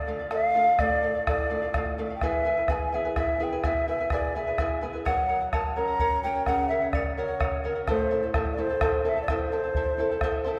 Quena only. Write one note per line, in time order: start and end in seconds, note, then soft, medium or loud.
0.00 0.28 D5 medium
0.33 0.82 F5 loud
0.80 1.27 D5 medium
1.28 1.94 D5 medium
2.16 2.26 G5 medium
2.24 2.73 E5 medium
2.71 2.96 G#5 medium
2.71 2.76 A5 medium
2.95 3.17 E5 medium
3.18 3.45 E5 medium
3.44 3.68 G5 medium
3.66 3.89 E5 medium
3.89 4.10 E5 medium
4.13 4.34 D5 medium
4.36 4.85 E5 medium
5.06 5.49 F#5 loud
5.53 5.78 A5 medium
5.76 6.23 A#5 loud
6.24 6.45 G5 medium
6.46 6.68 F#5 loud
6.69 6.91 E5 medium
6.92 7.15 D5 medium
7.16 7.66 C#5 medium
7.89 8.32 C5 medium
8.53 8.61 D5 medium
8.60 8.82 C5 medium
8.83 9.04 C5 medium
9.07 9.22 E5 medium
9.22 9.31 D5 medium
9.29 10.46 C5 medium